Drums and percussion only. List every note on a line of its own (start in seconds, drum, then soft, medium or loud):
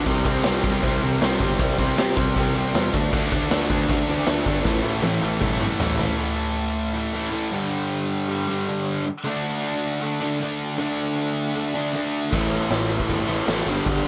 0.06 kick loud
0.06 crash loud
0.25 kick medium
0.44 snare loud
0.44 open hi-hat medium
0.64 kick medium
0.83 kick loud
0.83 open hi-hat medium
1.22 snare loud
1.22 open hi-hat medium
1.40 kick medium
1.59 kick loud
1.59 open hi-hat medium
1.79 kick medium
1.98 snare loud
1.98 open hi-hat medium
2.17 kick loud
2.36 kick loud
2.36 open hi-hat medium
2.75 snare loud
2.75 open hi-hat medium
2.94 kick medium
3.13 kick loud
3.13 crash loud
3.32 kick medium
3.51 snare loud
3.51 open hi-hat medium
3.70 kick loud
3.89 kick loud
3.89 open hi-hat medium
4.27 snare loud
4.27 open hi-hat medium
4.46 kick medium
4.65 kick loud
4.65 snare medium
5.03 high tom medium
5.41 kick loud
5.41 mid tom medium
5.61 mid tom medium
5.80 floor tom loud
5.99 floor tom loud
12.33 kick loud
12.33 crash medium
12.52 crash medium
12.71 snare loud
12.71 crash medium
12.90 crash medium
13.00 kick medium
13.10 kick medium
13.10 crash medium
13.29 crash medium
13.48 snare loud
13.48 crash medium
13.67 crash medium
13.86 kick loud
13.86 crash medium